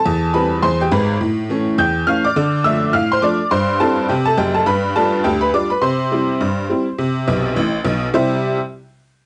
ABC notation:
X:1
M:2/4
L:1/16
Q:"Swing 16ths" 1/4=104
K:C
V:1 name="Honky-tonk piano"
[Aa]2 [Bb]2 [cc'] [Gg] [Bb]2 | z4 [gg']2 [ff'] [dd']- | [dd']2 [ee']2 [ff'] [cc'] [dd']2 | [cc']2 [Aa]2 [Gg] [Aa] [Gg] [Aa] |
[Bb]2 [Aa]2 [Gg] [Bb] [dd'] [Bb] | [cc']8- | [cc']6 z2 | [C,G,EGce]2 z6 |]
V:2 name="Honky-tonk piano" clef=bass
E,,2 [E,G,C]2 E,,2 [_A,,,_A,,]2 | A,,2 [E,A,^C]2 E,,2 [E,A,C]2 | D,2 [F,A,D]2 A,,2 [F,A,D]2 | G,,2 [G,CE]2 C,2 [^F,,,^F,,]2 |
G,,2 [G,DF]2 D,,2 [G,DF]2 | C,2 [G,CE]2 G,,2 [G,CE]2 | C,2 [B,,,B,,]2 [A,,,A,,]2 [B,,,B,,]2 | z8 |]